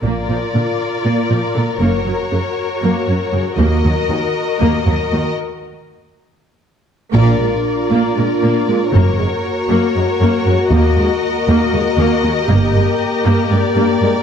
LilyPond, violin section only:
\new Staff \with { instrumentName = "Violin section" } { \time 7/8 \key ees \major \tempo 4 = 118 << { d''2.~ d''8 | des''2.~ des''8 | ees''2.~ ees''8 | r2. r8 |
d''2.~ d''8 | des''2.~ des''8 | ees''2.~ ees''8~ | ees''2 d''4. | } \\ { bes'2.~ bes'8~ | bes'2.~ bes'8 | bes'2.~ bes'8 | r2. r8 |
bes'2.~ bes'8~ | bes'2.~ bes'8 | bes'2.~ bes'8~ | bes'2.~ bes'8 | } >> }